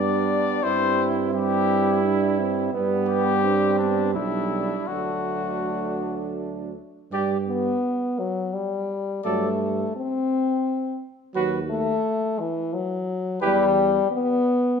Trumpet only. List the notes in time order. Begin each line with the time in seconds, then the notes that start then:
Already playing: D5
0.63 C5
1.34 G4
3.08 G4
3.78 D4
4.14 E4
4.87 F#4
7.12 D5
9.24 D5
11.35 B4
13.41 B4